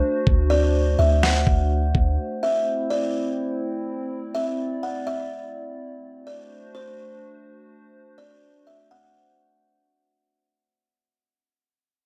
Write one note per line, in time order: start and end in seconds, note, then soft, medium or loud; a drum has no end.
0.00 5.99 A3 medium
0.00 2.15 D4 medium
0.00 2.15 F#4 medium
0.00 0.23 C5 medium
0.00 4.07 C5 medium
0.27 0.96 D2 loud
0.27 kick loud
0.50 0.96 D5 loud
0.99 1.45 D2 loud
0.99 1.22 E5 medium
1.23 1.68 F#5 medium
1.23 snare loud
1.47 1.93 D2 loud
1.47 kick medium
1.95 2.18 D2 loud
1.95 kick medium
2.19 5.99 C4 medium
2.19 5.99 E4 medium
2.43 2.88 E5 medium
2.90 4.07 D5 medium
4.11 6.01 D5 medium
4.35 4.80 E5 medium
4.83 5.06 F#5 medium
5.07 5.52 E5 medium
6.03 9.83 A3 medium
6.03 9.83 D4 medium
6.03 9.83 F#4 medium
6.03 9.83 C5 medium
6.27 6.72 D5 medium
6.75 7.91 C5 medium
8.18 8.63 D5 medium
8.67 8.90 E5 medium
8.91 9.36 F#5 medium